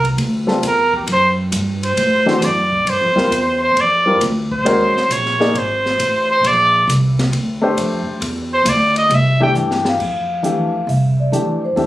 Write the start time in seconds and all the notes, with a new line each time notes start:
Already playing: C2
0.04 kick, ride
0.17 D2, ride
0.47 G3 C4 F4 A4, snare
0.62 E2, hi-hat pedal, ride
0.67 A#4
0.94 G4, kick
1.07 F#2, ride
1.12 C5
1.52 G2, hi-hat pedal, ride
1.83 C5, ride
1.97 A2, ride
2.26 E3 A3 D4 F#4, snare
2.41 F#2 D5, snare, hi-hat pedal, ride
2.72 kick
2.85 G2 C5, ride
3.01 F2
3.16 D2 G3 C4 F4 A#4, snare
3.31 E2, hi-hat pedal, ride
3.63 C5
3.75 F2, ride
3.81 D5
4.06 G3 C4 F4 A#4
4.20 D2, hi-hat pedal, ride
4.51 C5, kick
4.65 D#2 G#3 C#4 F#4 A#4, ride
4.95 muted upright bass stroke, snare
5.09 A#1 C#5, hi-hat pedal, ride
5.26 snare
5.40 A#3 D#4 G#4 D5, snare
5.54 G#1 C5, ride
5.86 snare
5.98 A1, hi-hat pedal, ride
6.31 C5
6.43 A#1 D5, ride
6.87 C2, hi-hat pedal, ride
7.19 snare, ride
7.32 D2, ride
7.62 A3 D4 G4 C5
7.77 F2, hi-hat pedal, ride
8.07 muted upright bass stroke
8.21 E2, ride
8.53 C5
8.65 D2 D5, hi-hat pedal, ride
8.96 D#5, ride
9.10 C2, ride
9.14 E5
9.40 E3 A3 D4 G4 G5
9.54 G2 G5, hi-hat pedal
9.71 snare
9.85 F5, snare
9.99 F2, kick, crash
10.42 E3 A3 D4 G4, closed hi-hat
10.87 C2 E5, open hi-hat
11.20 D5
11.32 F2 E3 A3 D4 G4, closed hi-hat
11.64 C5
11.76 E2 E3 A3 D4 G4 E5, open hi-hat